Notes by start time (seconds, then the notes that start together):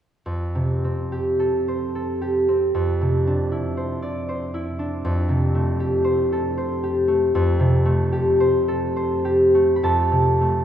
0.26 F2
0.55 C3
0.84 C4
1.12 G4
1.39 A4
1.68 C5
1.95 A4
2.22 G4
2.48 C4
2.75 F2
3.01 C3
3.27 D4
3.52 E4
3.77 C5
4.02 D5
4.29 C5
4.54 E4
4.79 D4
5.05 F2
5.29 C3
5.55 A3
5.80 G4
6.04 C5
6.32 A4
6.58 C5
6.83 G4
7.08 A3
7.35 F2
7.59 C3
7.85 A3
8.12 G4
8.40 C5
8.68 A4
8.96 C5
9.25 G4
9.54 A3
9.76 B5
9.83 F2 A4 A5
10.11 C3
10.41 A3